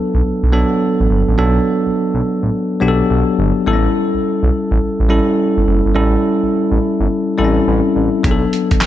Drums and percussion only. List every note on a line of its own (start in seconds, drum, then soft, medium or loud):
8.24 kick loud
8.24 closed hi-hat medium
8.53 closed hi-hat medium
8.71 kick medium
8.71 closed hi-hat medium
8.81 snare loud
8.81 clap medium
8.81 closed hi-hat medium